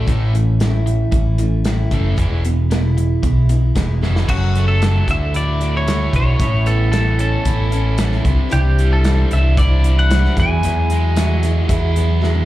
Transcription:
0.06 A1 A2 E3 A3 C#4 E4, kick, closed hi-hat
0.33 A2 E3 A3 C#4 E4, closed hi-hat
0.60 A2 E3 A3 C#4 E4, snare, closed hi-hat
0.86 A2 E3, closed hi-hat
1.12 A1 A2 E3 A3 C#4 E4, kick, closed hi-hat
1.38 A2 E3 A3 C#4 E4, closed hi-hat
1.65 A2 E3 A3 C#4 E4, snare, closed hi-hat
1.91 F#1 A2 E3 A3 C#4 E4, kick, closed hi-hat
2.17 E1 E2 B2 E3 G#3 B3 E4, kick, closed hi-hat
2.44 E2 B2 E3 G#3 B3 E4, closed hi-hat
2.70 E2 B2 E3 G#3 B3 E4, snare, closed hi-hat
2.97 E2 B2, closed hi-hat
3.23 B1 E2 B2 E3 G#3 B3, kick, closed hi-hat
3.27 E4
3.49 E2 B2 B3 E4, closed hi-hat
3.53 E3 G#3
3.75 E1 E2 B2 E3 G#3 B3 E4, kick, snare, closed hi-hat
4.01 F1 E2 B2 E3 G#3 B3 E4, snare
4.16 snare
4.28 F#1 F#2 C#3 F#3 A3 C#4 F#4, kick, crash
4.55 A3, closed hi-hat
4.68 A4
4.82 F#3, snare, closed hi-hat
5.08 D2 D3 A3 E4 F#4 E5, kick, closed hi-hat
5.34 D3 A3 E4 F#4 D5, closed hi-hat
5.61 A3 D4 E4 F#4, closed hi-hat
5.77 C#5
5.87 D3 A3 E4 F#4, snare, closed hi-hat
6.13 B1 A3 D4 E4 F#4 C#5, kick, closed hi-hat
6.39 A1 A2 E3 B3 C#4 E4, kick, closed hi-hat
6.66 B3 A4, closed hi-hat
6.92 E3 A4, snare, closed hi-hat
7.19 B3 C#4 E4 A4, closed hi-hat
7.45 A1 E3 B3 C#4 E4, kick, closed hi-hat
7.70 B3 C#4 E4, closed hi-hat
7.97 E3 B3 C#4 E4, snare, closed hi-hat
8.12 snare
8.25 C2 C3 G3 D4 E4, kick, closed hi-hat
8.49 C2 C3 E3 G3 D4 E4 G4 C5 D5, closed hi-hat
8.79 G3, closed hi-hat
8.93 A4
9.04 E3 E4 C5 D5, snare, closed hi-hat
9.31 C2 G3 D4 E4 E5, closed hi-hat
9.57 E3 G3 D4 E4 C5 D5, kick, closed hi-hat
9.84 G3 D4 E4, closed hi-hat
9.99 F#5
10.10 E3 G3 E4 C5 D5, snare, closed hi-hat
10.14 D4 E4
10.25 snare
10.36 E2 F#3 G#3 B3 E4 F#4 G#4 E5 G#5, kick, closed hi-hat
10.63 E2 B2 F#3 G#3 B3 E4, closed hi-hat
10.90 G#3, closed hi-hat
11.16 F#3 F#4 G#4 E5, snare, closed hi-hat
11.43 G#3 B3 E4, snare, closed hi-hat
11.47 F#3
11.68 E2 F#3 G#3 B3 E4 F#4 G#4 E5, kick, closed hi-hat
11.96 F#3 G#3 B3 E4, closed hi-hat
12.21 F#3 G#3 B3 E4 F#4 G#4 E5, snare
12.35 high tom

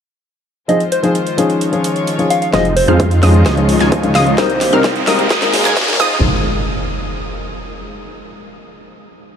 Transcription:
0.68 D#3 F3 G#3 C4 D#4 F4 G#4 C5 D#5, closed hi-hat
0.80 closed hi-hat
0.92 C5, closed hi-hat
1.03 F3 C4 D#4 G#4 C5, closed hi-hat
1.15 closed hi-hat
1.27 closed hi-hat
1.38 F3 C#4 D#4 G#4, closed hi-hat
1.50 closed hi-hat
1.61 D#3 F4 C#5, closed hi-hat
1.72 F3 C#4 D#4 G#4, closed hi-hat
1.84 closed hi-hat
1.96 closed hi-hat
2.07 closed hi-hat
2.18 F3 C#4 D#4 G#4, closed hi-hat
2.30 F5, closed hi-hat
2.42 F5, closed hi-hat
2.53 F1 D#3 F3 G#3 C4 D#4 F4 G#4 C5 D#5 D#6, kick, snare, closed hi-hat, riser
2.65 closed hi-hat
2.76 C5, open hi-hat
2.88 F2 F3 G#3 C4 D#4 F4 G#4 C5 F5 F6, closed hi-hat
3.00 kick, closed hi-hat
3.11 closed hi-hat
3.22 F2 F3 G#3 C#4 D#4 F4 G#4 C5 D#5 D#6, snare, open hi-hat
3.34 closed hi-hat
3.46 C#2 G#3 C#4 D#4 F4 C#5 D#5 D#6, kick, snare, closed hi-hat
3.57 F3 C#4 D#4 G#4, closed hi-hat
3.69 open hi-hat
3.80 C#2 G#3 D#4 F4 C#5 G#5 G#6, snare, closed hi-hat
3.92 kick, closed hi-hat
4.03 F3 C#4 D#4 G#4, closed hi-hat
4.15 C#2 G#3 D#4 F4 C#5 D#5 F5 D#6, snare, open hi-hat
4.27 F5, closed hi-hat
4.38 G3 A#3 C4 D#4 G4 A#4 C5 D#5 D#6, kick, snare, closed hi-hat
4.50 closed hi-hat
4.61 snare, open hi-hat
4.72 C2 G3 C4 D#4 A#4 F5 F6, closed hi-hat
4.84 kick, snare, closed hi-hat
4.96 closed hi-hat
5.07 C2 G3 G#3 A#3 C4 D#4 A#4 D#5 D#6, snare, open hi-hat
5.19 closed hi-hat
5.30 G#1 G#3 A#3 D#4 G#4 A#4 D#5 D#6, kick, snare, closed hi-hat
5.41 G#3 A#3 D#4 A#4, snare, closed hi-hat
5.53 snare, open hi-hat
5.65 G#2 G#3 A#3 D#4 A#4 G#5 G#6, snare, closed hi-hat
5.77 kick, snare, closed hi-hat
5.82 snare
5.88 G#3 A#3 D#4 A#4, snare, closed hi-hat
5.94 snare
5.98 F1 D#3 F3 G#3 C4 D#4 F4 G#4 C5 D#5 D#6, kick, crash, impact

